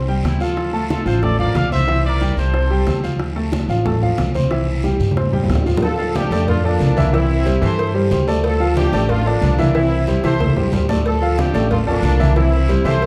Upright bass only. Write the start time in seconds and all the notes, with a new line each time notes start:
Already playing: C2
0.23 D2
1.06 A1
1.55 C2
2.37 C2
2.86 D2
3.68 A1
4.18 C2
4.99 G2
5.49 D2
6.31 F2
6.80 C2
7.62 G2
8.11 D2
8.92 A1
9.41 C2
10.23 C2
10.56 C2
10.72 D2
11.54 A1
12.03 C2
12.84 C2